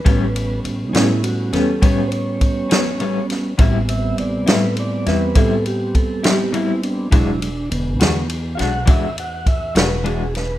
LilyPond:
<<
  \new Staff \with { instrumentName = "Tonewheel organ" } { \time 12/8 \key a \major \tempo 4. = 68 b'4 r8 <dis' e'>8 fis'8 a'8 cis''8 <c'' cis''>2 r8 | r8 e''8 d''8 b'8 d''8 b'8 a'8 g'8 a'8 g'8 e'8 d'8 | e'8 d'8 <d b>4 r8 <f'' fis''>8 e''8 fis''8 e''8 b'8 gis'8 b'8 | }
  \new Staff \with { instrumentName = "Tonewheel organ" } { \time 12/8 \key a \major <g b cis'>1. | <g b c'>1. | <fis gis d'>8 r1 r4. | }
  \new Staff \with { instrumentName = "Clean electric guitar" } { \time 12/8 \key a \major <a, g b cis'>8 r4 <g b cis'>8 r8 <g b cis'>8 <a, g b cis'>8 r4 <g b cis'>8 <a, g b cis'>8 r8 | <a, g c' e'>8 r4 <g c' e'>8 r8 <g c' e'>8 <a, g c' e'>8 r4 <g c' e'>8 <a, g c' e'>8 r8 | <e gis d' fis'>8 r4 <gis d' fis'>8 r8 <gis d' fis'>8 <e gis d' fis'>8 r4 <gis d' fis'>8 <e gis d' fis'>8 r8 | }
  \new Staff \with { instrumentName = "Upright bass" } { \clef bass \time 12/8 \key a \major a,,4 a,,8 a,4 e,8 a,4. a,,4. | a,,4 a,,8 a,4 e,8 a,4. a,,4. | e,,4 e,,8 e,4 b,,8 e,4. e,,4. | }
  \new DrumStaff \with { instrumentName = "Drums" } \drummode { \time 12/8 <bd cymr>8 cymr8 cymr8 <cymr sn>8 cymr8 <cymr sn>8 <bd cymr>8 cymr8 <bd cymr>8 <cymr sn>8 cymr8 <cymr sn>8 | <bd cymr>8 cymr8 cymr8 <cymr sn>8 cymr8 <cymr sn>8 <bd cymr>8 cymr8 <bd cymr>8 <cymr sn>8 cymr8 cymr8 | <bd cymr>8 cymr8 cymr8 <cymr sn>8 cymr8 <cymr sn>8 <bd cymr>8 cymr8 <bd cymr>8 <cymr sn>8 cymr8 <cymr sn>8 | }
>>